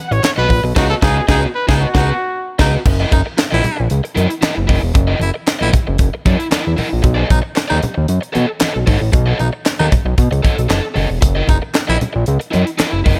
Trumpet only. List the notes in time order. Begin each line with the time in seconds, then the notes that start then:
0.07 F#5
0.12 C#5
0.24 C#5
0.38 B4
0.77 F#4
0.90 A4
1.02 G#4
1.29 G#4
1.55 B4
1.68 G#4
1.81 F#4